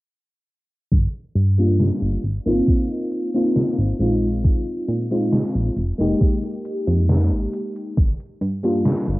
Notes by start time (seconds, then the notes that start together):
0.92 G1, kick, closed hi-hat
1.14 closed hi-hat
1.35 G2, closed hi-hat
1.58 G3 A#3 D4 F4, closed hi-hat
1.80 snare, closed hi-hat
2.02 G1, closed hi-hat
2.23 G#1, closed hi-hat
2.46 G#1 A#3 C4 D#4 F4, closed hi-hat
2.68 kick, closed hi-hat
2.90 closed hi-hat
3.12 closed hi-hat
3.34 A#3 C4 D#4 F4, closed hi-hat
3.56 snare, closed hi-hat
3.78 G#1, closed hi-hat
3.99 A#1 G#3 C4 D#4 F4, closed hi-hat
4.22 closed hi-hat
4.44 kick, closed hi-hat
4.67 closed hi-hat
4.88 A#2, closed hi-hat
5.11 G#3 C4 D#4 F4, closed hi-hat
5.32 snare, closed hi-hat
5.55 A#1, closed hi-hat
5.77 F1, closed hi-hat
5.98 F1 G#3 A#3 D#4 G4, closed hi-hat
6.21 kick, closed hi-hat
6.43 closed hi-hat
6.65 closed hi-hat
6.87 F2, closed hi-hat
7.09 snare, closed hi-hat
7.31 G#1, closed hi-hat
7.53 closed hi-hat
7.76 closed hi-hat
7.97 G1, kick, closed hi-hat
8.20 closed hi-hat
8.41 G2, closed hi-hat
8.63 G3 A#3 D4 F4, closed hi-hat
8.86 snare, closed hi-hat
9.08 G1, closed hi-hat